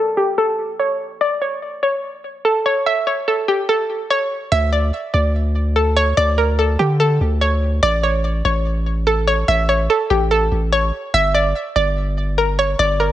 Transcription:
Already playing: A#3 D4 A4
0.17 G4
0.38 A4
0.80 C#5
1.21 D5
1.42 C#5
1.83 C#5
2.45 A4
2.66 C#5
2.86 E5
3.07 C#5
3.28 A4
3.48 G4
3.69 A4
4.10 C#5
4.52 D2 E5
4.73 D5
5.14 D2 D5
5.76 A4
5.97 C#5
6.17 D2 D5
6.38 A#4
6.59 A4
6.79 D3 G4
7.00 A4
7.21 D2
7.41 C#5
7.83 A1 D5
8.03 C#5
8.45 A1 C#5
9.07 A4
9.27 C#5
9.48 A1 E5
9.69 C#5
9.90 A4
10.10 A1 G4
10.31 A4
10.52 A1
10.72 C#5
11.14 G1 E5
11.34 D5
11.76 G1 D5
12.38 A#4
12.59 C#5
12.79 G1 D5
13.00 A#4

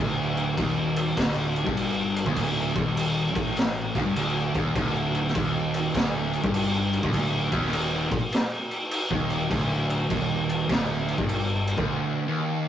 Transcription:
Already playing: D1
0.00 D2
0.37 crash
0.57 D#1 D#2, kick, crash
0.96 crash
1.16 D1 D2, kick, snare, crash
1.56 crash
1.65 G1 G2, kick
1.77 crash
2.16 crash
2.25 D1 D2, kick
2.36 kick, crash
2.75 D#1 D#2, kick, crash
2.97 crash
3.35 A1 A2, kick, crash
3.57 snare, crash
3.95 D1 D2, kick, crash
4.05 G1 G2
4.15 D1 D2, crash
4.54 D#1 D#2, kick, crash
4.75 D1 D2, kick, crash
5.14 crash
5.27 snare
5.35 D#1 D#2, kick, crash
5.74 crash
5.94 D1 D2, kick, snare, crash
6.33 crash
6.43 G1 G2, kick
6.54 crash
6.93 crash
7.03 D1 D2, kick
7.13 kick, crash
7.52 D#1 D#2, kick, crash
7.65 snare
7.73 crash
8.11 A#1 A#2, kick, crash
8.32 snare, crash
8.71 crash
8.91 crash
9.11 D#1 D#2, kick
9.30 crash
9.50 D1 D2, kick, crash
9.90 crash
10.09 D#1 D#2, kick, crash
10.49 crash
10.68 D1 D2, kick, snare, crash
11.08 crash
11.18 G1 G2, kick
11.29 crash
11.67 crash
11.77 D1 D2, kick
12.26 D#2

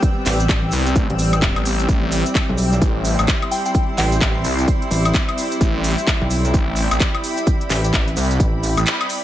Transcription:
Already playing: G3 B3 C4 D5 G5 E6
0.02 kick, closed hi-hat, cabasa
0.26 A1, clap, open hi-hat, cabasa
0.40 closed hi-hat, cabasa
0.49 A1, kick, clap, closed hi-hat, cabasa
0.72 C2, open hi-hat, cabasa
0.87 closed hi-hat, cabasa
0.95 A1, kick, closed hi-hat, cabasa
1.10 A1, closed hi-hat
1.19 open hi-hat, cabasa
1.33 closed hi-hat, cabasa, high woodblock
1.42 kick, clap, closed hi-hat, cabasa
1.56 A1, closed hi-hat, high woodblock
1.65 open hi-hat, cabasa
1.79 closed hi-hat, cabasa
1.89 A1 E4, kick, closed hi-hat, cabasa
2.12 open hi-hat, cabasa
2.26 closed hi-hat, cabasa
2.32 C6, kick, clap, closed hi-hat, cabasa
2.49 B1
2.58 open hi-hat, cabasa
2.73 closed hi-hat, cabasa
2.82 A1, kick, closed hi-hat, cabasa
3.05 open hi-hat, cabasa
3.19 A1, closed hi-hat, cabasa, high woodblock
3.27 kick, clap, closed hi-hat, cabasa
3.42 closed hi-hat, high woodblock
3.51 G5, open hi-hat, cabasa
3.66 G5, closed hi-hat, cabasa
3.74 kick, closed hi-hat, cabasa
3.98 A1 G5, clap, open hi-hat, cabasa
4.12 closed hi-hat, cabasa
4.21 A1, kick, clap, closed hi-hat, cabasa
4.44 C2, open hi-hat, cabasa
4.59 closed hi-hat, cabasa
4.68 kick, closed hi-hat, cabasa
4.82 closed hi-hat
4.91 A1, open hi-hat, cabasa
5.05 closed hi-hat, cabasa, high woodblock
5.14 kick, clap, closed hi-hat, cabasa
5.29 closed hi-hat, high woodblock
5.38 open hi-hat, cabasa
5.51 closed hi-hat, cabasa
5.61 A1, kick, closed hi-hat, cabasa
5.84 open hi-hat, cabasa
5.98 closed hi-hat, cabasa
6.04 B5, kick, clap, closed hi-hat, cabasa
6.21 B1
6.30 open hi-hat, cabasa
6.45 closed hi-hat, cabasa
6.54 A1, kick, closed hi-hat, cabasa
6.76 open hi-hat, cabasa
6.91 A1, closed hi-hat, cabasa, high woodblock
7.00 kick, clap, closed hi-hat, cabasa
7.15 closed hi-hat, high woodblock
7.24 open hi-hat, cabasa
7.36 closed hi-hat, cabasa
7.47 kick, closed hi-hat, cabasa
7.61 closed hi-hat
7.70 A1, clap, open hi-hat, cabasa
7.84 closed hi-hat, cabasa
7.93 A1, kick, clap, closed hi-hat, cabasa
8.08 closed hi-hat
8.17 C2, open hi-hat, cabasa
8.31 closed hi-hat, cabasa
8.40 A1, kick, closed hi-hat, cabasa
8.63 open hi-hat, cabasa
8.77 A1, closed hi-hat, cabasa, high woodblock
8.86 clap, closed hi-hat, cabasa
9.01 closed hi-hat, high woodblock
9.10 open hi-hat, cabasa

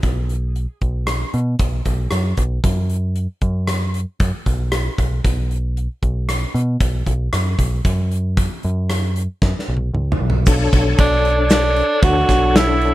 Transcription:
0.03 B1, kick, closed hi-hat
0.29 closed hi-hat
0.56 closed hi-hat
0.81 B1, kick, closed hi-hat
1.07 cross-stick, closed hi-hat
1.34 B2, closed hi-hat
1.59 B1, kick, closed hi-hat
1.85 B1, kick, closed hi-hat
2.11 F#2, cross-stick, closed hi-hat
2.37 B1, kick, closed hi-hat
2.64 F#2, kick, closed hi-hat
2.90 closed hi-hat
3.16 closed hi-hat
3.41 F#2, kick, closed hi-hat
3.67 cross-stick, closed hi-hat
3.94 closed hi-hat
4.20 F#2, kick, closed hi-hat
4.46 B1, kick, closed hi-hat
4.72 cross-stick, closed hi-hat
4.98 B1, kick, closed hi-hat
5.24 B1, kick, closed hi-hat
5.51 closed hi-hat
5.77 closed hi-hat
6.03 B1, kick, closed hi-hat
6.29 cross-stick, closed hi-hat
6.54 B2, closed hi-hat
6.80 B1, kick, closed hi-hat
7.06 B1, kick, closed hi-hat
7.33 F#2, cross-stick, closed hi-hat
7.58 B1, kick, closed hi-hat
7.85 F#2, kick, closed hi-hat
8.11 closed hi-hat
8.37 kick, closed hi-hat
8.63 F#2, closed hi-hat
8.90 cross-stick, closed hi-hat
9.16 closed hi-hat
9.42 F#2, kick, snare
9.59 snare
9.68 B1
9.77 high tom
9.94 C#2, mid tom
10.12 mid tom
10.21 B1
10.30 floor tom
10.46 B1 D4 A4 C#5, kick, crash, shaker
10.73 B1, kick, ride
10.97 B1 D4, kick, ride, shaker
11.25 ride
11.50 D4, snare, ride, shaker
11.76 ride
12.02 D2 F#4, kick, ride
12.29 B1, kick, snare, ride, shaker
12.56 E4, snare, ride
12.81 ride

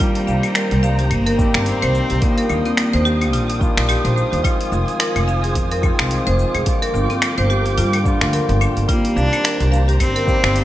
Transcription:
Already playing: D#3 G3 G5
0.00 G3 A#3 C4 D#4 G4 C5 A#5, kick, open hi-hat, cabasa
0.15 open hi-hat
0.27 C2 F5, cabasa
0.43 open hi-hat, cabasa, claves
0.55 A#4, finger snap, open hi-hat, cabasa
0.71 C2, open hi-hat
0.83 F5, cabasa
0.99 G4, open hi-hat, cabasa
1.11 G1 A#3, kick, open hi-hat, cabasa, claves
1.26 A#4, open hi-hat
1.37 D#3 G3 A#3 C4 G4, kick, cabasa
1.54 G1 C4, finger snap, open hi-hat, cabasa
1.66 C4, open hi-hat, cabasa
1.82 C2 C5, open hi-hat, claves
1.95 cabasa
2.10 C2 G4, open hi-hat, cabasa
2.20 D#3 G3 A#3 D4 F4 D#6, kick, open hi-hat, cabasa
2.24 F4
2.38 A#4, open hi-hat
2.49 D#2 A#3, cabasa, claves
2.65 C4, open hi-hat, cabasa
2.77 finger snap, open hi-hat, cabasa
2.93 D#2 C5, open hi-hat
3.05 G4, cabasa
3.21 open hi-hat, cabasa, claves
3.33 A#1 F4, open hi-hat, cabasa
3.50 open hi-hat
3.59 D#3 G3 A#3 D4 F4, kick, cabasa
3.77 A#1, finger snap, open hi-hat, cabasa
3.89 G4, open hi-hat, cabasa, claves
4.05 A#1 C5, open hi-hat
4.16 C5, cabasa
4.32 D#2 C5, open hi-hat, cabasa
4.42 D#3 F3 G#3 C4 F4 C5 G#5, kick, open hi-hat, cabasa, claves
4.46 F4
4.61 open hi-hat
4.72 F1 F5, cabasa
4.88 open hi-hat, cabasa
5.00 A#4, finger snap, open hi-hat, cabasa
5.16 F1, open hi-hat, claves
5.28 F5, cabasa
5.44 G#4, open hi-hat, cabasa
5.55 F2, kick, open hi-hat, cabasa
5.71 A#4, open hi-hat
5.81 D#3 F3 G#3 C4, kick, cabasa, claves
5.85 F4
5.99 C2 C4, finger snap, open hi-hat, cabasa
6.11 open hi-hat, cabasa
6.27 F1 C5, open hi-hat
6.39 cabasa
6.55 F1 G#4, open hi-hat, cabasa, claves
6.65 D3 F3 G3 A#3 F4 A#4 G5 D6, kick, open hi-hat, cabasa
6.82 A#4, open hi-hat
6.94 G1, cabasa
7.10 C4, open hi-hat, cabasa
7.22 finger snap, open hi-hat, cabasa, claves
7.38 G1 C5, open hi-hat
7.50 G4, cabasa
7.66 open hi-hat, cabasa
7.78 G2 F4, open hi-hat, cabasa
7.93 open hi-hat, claves
8.03 D3 F3 G3 A#3 D4, kick, cabasa
8.08 F4
8.21 D2, finger snap, open hi-hat, cabasa
8.33 A#4, open hi-hat, cabasa
8.49 G1, open hi-hat
8.61 D4, cabasa, claves
8.77 G1, open hi-hat, cabasa
8.87 D#3 G3 A#3 C4 F4 G4 C5 A#5, kick, open hi-hat, cabasa
8.91 G4
9.05 open hi-hat
9.16 C2 D4 F5, cabasa
9.33 open hi-hat, cabasa, claves
9.44 A#4, finger snap, open hi-hat, cabasa
9.60 C2, open hi-hat
9.72 F5, cabasa
9.88 G4, open hi-hat, cabasa
10.00 G1 C4, kick, open hi-hat, cabasa, claves
10.16 A#4, open hi-hat
10.25 D#3 G3 A#3 C4, kick, cabasa
10.29 G4
10.43 G1 C4, finger snap, open hi-hat, cabasa
10.56 open hi-hat, cabasa

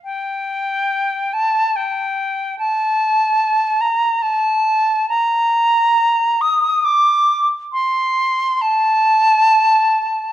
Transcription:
0.04 G5
1.33 A5
1.76 G5
2.58 A5
3.81 A#5
4.22 A5
5.09 A#5
6.41 D#6
6.84 D6
7.72 C6
8.61 A5

